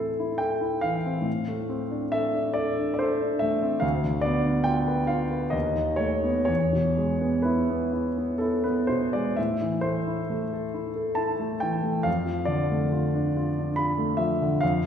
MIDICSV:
0, 0, Header, 1, 2, 480
1, 0, Start_track
1, 0, Tempo, 858369
1, 707, Time_signature, 3, 2, 24, 8
1, 3102, Tempo, 969305
1, 4062, Tempo, 934579
1, 5502, Tempo, 884956
1, 6942, Tempo, 842697
1, 8035, End_track
2, 0, Start_track
2, 0, Title_t, "Grand piano"
2, 0, Program_c, 0, 0
2, 0, Control_c, 0, 64, 127
2, 0, Note_on_c, 0, 45, 32
2, 0, Note_on_c, 0, 52, 25
2, 0, Note_on_c, 0, 60, 30
2, 0, Note_on_c, 0, 64, 30
2, 0, Note_on_c, 0, 69, 30
2, 0, Note_on_c, 0, 72, 55
2, 0, Note_on_c, 0, 76, 50
2, 109, Note_off_c, 0, 64, 0
2, 109, Note_on_c, 0, 64, 32
2, 173, Note_off_c, 0, 69, 0
2, 212, Note_on_c, 0, 79, 59
2, 217, Note_off_c, 0, 72, 0
2, 227, Note_on_c, 0, 69, 32
2, 299, Note_off_c, 0, 64, 0
2, 341, Note_on_c, 0, 64, 32
2, 418, Note_off_c, 0, 69, 0
2, 455, Note_on_c, 0, 77, 57
2, 459, Note_off_c, 0, 79, 0
2, 467, Note_off_c, 0, 52, 0
2, 467, Note_on_c, 0, 52, 32
2, 536, Note_off_c, 0, 64, 0
2, 590, Note_off_c, 0, 60, 0
2, 590, Note_on_c, 0, 60, 29
2, 660, Note_off_c, 0, 52, 0
2, 672, Note_off_c, 0, 45, 0
2, 681, Note_on_c, 0, 45, 37
2, 709, Note_off_c, 0, 60, 0
2, 717, Control_c, 0, 64, 0
2, 721, Note_off_c, 0, 76, 0
2, 797, Control_c, 0, 64, 127
2, 828, Note_on_c, 0, 57, 31
2, 946, Note_on_c, 0, 60, 32
2, 1022, Note_off_c, 0, 57, 0
2, 1069, Note_on_c, 0, 62, 30
2, 1141, Note_off_c, 0, 60, 0
2, 1184, Note_on_c, 0, 76, 69
2, 1186, Note_off_c, 0, 77, 0
2, 1191, Note_on_c, 0, 69, 38
2, 1263, Note_off_c, 0, 62, 0
2, 1311, Note_on_c, 0, 62, 31
2, 1385, Note_off_c, 0, 69, 0
2, 1418, Note_on_c, 0, 74, 62
2, 1429, Note_off_c, 0, 76, 0
2, 1429, Note_on_c, 0, 69, 33
2, 1505, Note_off_c, 0, 62, 0
2, 1560, Note_on_c, 0, 62, 31
2, 1624, Note_off_c, 0, 69, 0
2, 1629, Note_off_c, 0, 74, 0
2, 1643, Note_on_c, 0, 74, 44
2, 1671, Note_on_c, 0, 72, 56
2, 1678, Note_off_c, 0, 74, 0
2, 1689, Note_on_c, 0, 69, 37
2, 1749, Note_off_c, 0, 62, 0
2, 1802, Note_on_c, 0, 62, 36
2, 1872, Note_off_c, 0, 69, 0
2, 1897, Note_on_c, 0, 76, 65
2, 1909, Note_off_c, 0, 72, 0
2, 1913, Note_on_c, 0, 57, 36
2, 1985, Note_off_c, 0, 62, 0
2, 2025, Note_on_c, 0, 60, 35
2, 2098, Note_off_c, 0, 57, 0
2, 2107, Note_off_c, 0, 45, 0
2, 2124, Note_on_c, 0, 77, 55
2, 2135, Note_on_c, 0, 38, 43
2, 2136, Note_off_c, 0, 76, 0
2, 2142, Note_off_c, 0, 60, 0
2, 2152, Control_c, 0, 64, 0
2, 2248, Control_c, 0, 64, 127
2, 2261, Note_on_c, 0, 50, 30
2, 2357, Note_on_c, 0, 74, 64
2, 2368, Note_off_c, 0, 77, 0
2, 2373, Note_on_c, 0, 59, 35
2, 2450, Note_off_c, 0, 50, 0
2, 2490, Note_on_c, 0, 62, 32
2, 2566, Note_off_c, 0, 59, 0
2, 2593, Note_on_c, 0, 79, 71
2, 2604, Note_on_c, 0, 65, 38
2, 2606, Note_off_c, 0, 74, 0
2, 2685, Note_off_c, 0, 62, 0
2, 2728, Note_on_c, 0, 71, 34
2, 2802, Note_off_c, 0, 65, 0
2, 2836, Note_on_c, 0, 77, 51
2, 2844, Note_off_c, 0, 79, 0
2, 2848, Note_on_c, 0, 65, 35
2, 2924, Note_off_c, 0, 71, 0
2, 2968, Note_on_c, 0, 71, 33
2, 3047, Note_off_c, 0, 65, 0
2, 3074, Note_off_c, 0, 38, 0
2, 3077, Note_on_c, 0, 75, 54
2, 3089, Note_on_c, 0, 39, 43
2, 3091, Note_off_c, 0, 77, 0
2, 3096, Note_off_c, 0, 71, 0
2, 3109, Control_c, 0, 64, 0
2, 3197, Control_c, 0, 64, 127
2, 3205, Note_on_c, 0, 51, 28
2, 3308, Note_on_c, 0, 73, 59
2, 3318, Note_on_c, 0, 57, 32
2, 3319, Note_off_c, 0, 75, 0
2, 3397, Note_off_c, 0, 51, 0
2, 3442, Note_on_c, 0, 59, 29
2, 3516, Note_off_c, 0, 57, 0
2, 3542, Note_off_c, 0, 73, 0
2, 3549, Note_on_c, 0, 73, 58
2, 3551, Note_off_c, 0, 39, 0
2, 3562, Note_on_c, 0, 40, 37
2, 3567, Note_off_c, 0, 59, 0
2, 3579, Control_c, 0, 64, 0
2, 3687, Note_on_c, 0, 47, 28
2, 3688, Control_c, 0, 64, 127
2, 3811, Note_on_c, 0, 56, 29
2, 3888, Note_off_c, 0, 47, 0
2, 3926, Note_on_c, 0, 59, 29
2, 4010, Note_off_c, 0, 56, 0
2, 4031, Note_on_c, 0, 71, 47
2, 4043, Note_on_c, 0, 64, 32
2, 4051, Note_off_c, 0, 73, 0
2, 4129, Note_off_c, 0, 59, 0
2, 4169, Note_on_c, 0, 59, 30
2, 4249, Note_off_c, 0, 64, 0
2, 4289, Note_on_c, 0, 64, 31
2, 4370, Note_off_c, 0, 59, 0
2, 4417, Note_on_c, 0, 59, 28
2, 4488, Note_off_c, 0, 64, 0
2, 4522, Note_on_c, 0, 69, 55
2, 4529, Note_off_c, 0, 71, 0
2, 4537, Note_on_c, 0, 64, 30
2, 4612, Note_off_c, 0, 59, 0
2, 4653, Note_on_c, 0, 71, 50
2, 4654, Note_off_c, 0, 69, 0
2, 4661, Note_on_c, 0, 59, 29
2, 4734, Note_off_c, 0, 64, 0
2, 4774, Note_on_c, 0, 72, 55
2, 4782, Note_off_c, 0, 71, 0
2, 4784, Note_on_c, 0, 47, 28
2, 4860, Note_off_c, 0, 59, 0
2, 4904, Note_off_c, 0, 72, 0
2, 4907, Note_on_c, 0, 74, 49
2, 4916, Note_on_c, 0, 56, 27
2, 4982, Note_off_c, 0, 47, 0
2, 5007, Note_off_c, 0, 40, 0
2, 5027, Note_on_c, 0, 76, 48
2, 5030, Note_off_c, 0, 74, 0
2, 5034, Note_off_c, 0, 56, 0
2, 5038, Note_on_c, 0, 45, 38
2, 5040, Control_c, 0, 64, 0
2, 5121, Control_c, 0, 64, 127
2, 5157, Note_on_c, 0, 52, 27
2, 5257, Note_on_c, 0, 72, 58
2, 5266, Note_off_c, 0, 76, 0
2, 5269, Note_on_c, 0, 57, 29
2, 5342, Note_off_c, 0, 52, 0
2, 5390, Note_on_c, 0, 64, 27
2, 5455, Note_off_c, 0, 57, 0
2, 5507, Note_on_c, 0, 57, 34
2, 5577, Note_off_c, 0, 64, 0
2, 5632, Note_on_c, 0, 69, 33
2, 5699, Note_off_c, 0, 57, 0
2, 5748, Note_on_c, 0, 64, 31
2, 5822, Note_off_c, 0, 69, 0
2, 5863, Note_on_c, 0, 69, 30
2, 5941, Note_off_c, 0, 64, 0
2, 5969, Note_on_c, 0, 81, 54
2, 5979, Note_on_c, 0, 64, 31
2, 5982, Note_off_c, 0, 72, 0
2, 6060, Note_off_c, 0, 69, 0
2, 6102, Note_on_c, 0, 57, 29
2, 6177, Note_off_c, 0, 64, 0
2, 6214, Note_on_c, 0, 79, 60
2, 6221, Note_off_c, 0, 81, 0
2, 6227, Note_on_c, 0, 52, 30
2, 6298, Note_off_c, 0, 57, 0
2, 6338, Note_on_c, 0, 57, 29
2, 6419, Note_off_c, 0, 52, 0
2, 6447, Note_on_c, 0, 77, 57
2, 6449, Note_off_c, 0, 45, 0
2, 6453, Note_on_c, 0, 41, 38
2, 6460, Note_off_c, 0, 79, 0
2, 6462, Note_off_c, 0, 57, 0
2, 6478, Control_c, 0, 64, 0
2, 6567, Control_c, 0, 64, 127
2, 6571, Note_on_c, 0, 53, 26
2, 6676, Note_on_c, 0, 74, 57
2, 6690, Note_on_c, 0, 50, 33
2, 6693, Note_off_c, 0, 77, 0
2, 6767, Note_off_c, 0, 53, 0
2, 6814, Note_on_c, 0, 57, 30
2, 6886, Note_off_c, 0, 50, 0
2, 6931, Note_on_c, 0, 65, 35
2, 7011, Note_off_c, 0, 57, 0
2, 7059, Note_on_c, 0, 62, 36
2, 7133, Note_off_c, 0, 65, 0
2, 7182, Note_on_c, 0, 65, 38
2, 7255, Note_off_c, 0, 62, 0
2, 7309, Note_on_c, 0, 62, 32
2, 7373, Note_off_c, 0, 65, 0
2, 7406, Note_on_c, 0, 83, 68
2, 7407, Note_off_c, 0, 74, 0
2, 7420, Note_on_c, 0, 65, 36
2, 7493, Note_off_c, 0, 62, 0
2, 7534, Note_on_c, 0, 57, 34
2, 7608, Note_off_c, 0, 65, 0
2, 7640, Note_on_c, 0, 76, 55
2, 7649, Note_off_c, 0, 83, 0
2, 7649, Note_on_c, 0, 53, 36
2, 7726, Note_off_c, 0, 57, 0
2, 7782, Note_on_c, 0, 50, 34
2, 7845, Note_off_c, 0, 53, 0
2, 7867, Note_off_c, 0, 41, 0
2, 7888, Note_on_c, 0, 77, 59
2, 7890, Note_off_c, 0, 76, 0
2, 7901, Note_off_c, 0, 50, 0
2, 7903, Note_on_c, 0, 41, 44
2, 7907, Control_c, 0, 64, 0
2, 7998, Control_c, 0, 64, 127
2, 8035, Note_off_c, 0, 41, 0
2, 8035, Note_off_c, 0, 77, 0
2, 8035, End_track
0, 0, End_of_file